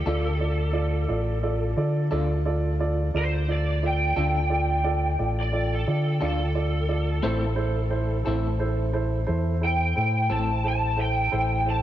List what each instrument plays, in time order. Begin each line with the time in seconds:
Already playing: lead electric guitar A4
0.06 fingered electric bass D2, clean electric guitar D3 D4 F4 A4, grand piano F4 A4 D5
0.40 grand piano F4 A4 D5
0.73 grand piano F4 A4 D5
1.08 fingered electric bass A1, grand piano F4 A4 D5
1.43 grand piano F4 A4 D5
1.77 fingered electric bass D3, grand piano F4 A4 D5
2.11 fingered electric bass D2, clean electric guitar D3 D4 F4 A4, grand piano F4 A4 D5
2.45 grand piano F4 A4 D5
2.80 grand piano F4 A4 D5
3.14 fingered electric bass D2, grand piano F4 A4 D5, lead electric guitar C5
3.48 grand piano F4 A4 D5, lead electric guitar D5
3.83 grand piano F4 A4 D5, lead electric guitar G5
4.16 fingered electric bass D2, clean electric guitar D3 D4 F4 A4, grand piano F4 A4 D5
4.49 grand piano F4 A4 D5
4.84 grand piano F4 A4 D5
5.19 fingered electric bass A1, grand piano F4 A4 D5
5.40 lead electric guitar D5
5.52 grand piano F4 A4 D5
5.74 lead electric guitar A4
5.87 fingered electric bass D3, grand piano F4 A4 D5
6.21 fingered electric bass D2, clean electric guitar D3 D4 F4 A4, grand piano F4 A4 D5, lead electric guitar A4
6.55 grand piano F4 A4 D5
6.89 grand piano F4 A4 D5
7.23 fingered electric bass A1, clean electric guitar A3 C4 E4 A4, grand piano E4 A4 C5
7.56 grand piano E4 A4 C5
7.90 grand piano E4 A4 C5
8.25 fingered electric bass A1, clean electric guitar A3 C4 E4 A4, grand piano E4 A4 C5
8.59 grand piano E4 A4 C5
8.93 grand piano E4 A4 C5
9.27 fingered electric bass E2, grand piano E4 A4 C5
9.61 grand piano E4 A4 C5, lead electric guitar G5
9.95 fingered electric bass A2, grand piano E4 A4 C5
10.29 fingered electric bass A1, clean electric guitar A3 C4 E4 A4, grand piano E4 A4 C5, lead electric guitar A5
10.64 grand piano E4 A4 C5, lead electric guitar A5
10.97 grand piano E4 A4 C5, lead electric guitar G5
11.32 fingered electric bass A1, grand piano E4 A4 C5
11.66 grand piano E4 A4 C5, lead electric guitar A5